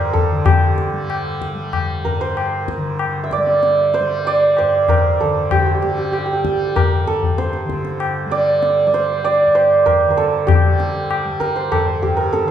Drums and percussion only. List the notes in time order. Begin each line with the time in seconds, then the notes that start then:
0.15 tabla ge
0.46 tabla na, tabla ge
0.78 tabla te
1.10 tabla na
1.42 tabla ke
1.73 tabla na, tabla ge
2.05 tabla ge
2.37 tabla na
2.68 tabla ke
2.99 tabla na
3.31 tabla ke
3.47 tabla te
3.63 tabla te
3.94 tabla te
4.25 tabla tin
4.57 tabla na
4.88 tabla na, tabla ge
5.20 tabla ge
5.51 tabla na, tabla ge
5.83 tabla te
6.13 tabla na
6.45 tabla ke
6.76 tabla na, tabla ge
7.08 tabla te
7.23 tabla ge
7.38 tabla te
7.53 tabla te
7.69 tabla ke
7.85 tabla te
8.00 tabla na
8.31 tabla te
8.63 tabla te
8.94 tabla te
9.24 tabla tin
9.56 tabla na
9.87 tabla na, tabla ge
10.18 tabla te
10.48 tabla na, tabla ge
10.80 tabla te
11.11 tabla na
11.41 tabla ke
11.72 tabla na, tabla ge
12.03 tabla ge
12.34 tabla te